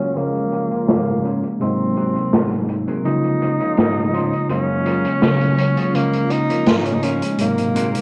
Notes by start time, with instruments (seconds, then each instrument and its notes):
Already playing: tine electric piano C#3 F#3 G#3 A#3, ambient pad C#3 F#3 G#3 A#3, tenor saxophone C#4
0.00 clean electric guitar A#3 F4 F#4 G#4
0.15 tine electric piano C#3 F3 G#3 A#3 F4, clean electric guitar C#3, ambient pad F3 F4, tenor saxophone A#3, closed hi-hat
0.34 closed hi-hat
0.52 muted clean electric guitar stroke, closed hi-hat
0.71 clean electric guitar C#4 F4 A#4, closed hi-hat
0.88 clean electric guitar G#2, tenor saxophone A#3, snare, closed hi-hat
1.24 clean electric guitar C#4 F4 A#4, closed hi-hat
1.43 closed hi-hat
1.59 clean electric guitar G#2, tine electric piano C3 F#3 G#3 A#3 D#4, ambient pad C3 F#3 D#4, tenor saxophone C4, closed hi-hat
1.96 clean electric guitar C4 F#4 G#4 A#4, closed hi-hat
2.15 closed hi-hat
2.33 clean electric guitar G#2, snare, closed hi-hat
2.52 closed hi-hat
2.69 muted clean electric guitar stroke, closed hi-hat
2.87 clean electric guitar C4 F#4 G#4 A#4, closed hi-hat
3.04 tine electric piano C#3 F3 G#3 A#3 F4, clean electric guitar C#3, ambient pad C#3 F3 F4, tenor saxophone D#4, closed hi-hat
3.24 closed hi-hat
3.41 muted clean electric guitar stroke, closed hi-hat
3.59 clean electric guitar C#4 F4 A#4, closed hi-hat
3.77 clean electric guitar G#2, snare, closed hi-hat
4.13 clean electric guitar C#4 F4 C5, closed hi-hat
4.33 closed hi-hat
4.49 clean electric guitar F#2, tine electric piano C#3 F#3 G#3 A#3 F5, ambient pad F#3 A#3, tenor saxophone C#4, closed hi-hat
4.85 clean electric guitar F4 F#4 G#4 A#4, closed hi-hat
5.05 closed hi-hat
5.22 clean electric guitar C#3, snare, closed hi-hat
5.41 closed hi-hat
5.58 muted clean electric guitar stroke, closed hi-hat
5.77 clean electric guitar F4 F#4 G#4 C#5, closed hi-hat
5.93 tine electric piano C#3 F3 G#3 A#3 F4, clean electric guitar C#3, ambient pad F3 G#3 A#3, tenor saxophone A#3, closed hi-hat
6.13 closed hi-hat
6.30 tenor saxophone D#4, muted clean electric guitar stroke, closed hi-hat
6.49 clean electric guitar C#4 F4 A#4, closed hi-hat
6.66 clean electric guitar G#2, tenor saxophone F4, snare, closed hi-hat
6.76 tenor saxophone D#4
6.85 tenor saxophone C#4, closed hi-hat
6.94 tenor saxophone D#4
7.03 clean electric guitar C#4 F4 A#4, tenor saxophone C#4, closed hi-hat
7.22 closed hi-hat
7.38 clean electric guitar G#2, ambient pad A#2 F#3 A#3 D#4, tine electric piano C3 F#3 G#3 A#3 D#4, tenor saxophone A#3, closed hi-hat
7.58 closed hi-hat
7.75 clean electric guitar C4 F#4 G#4 A#4, closed hi-hat
7.95 closed hi-hat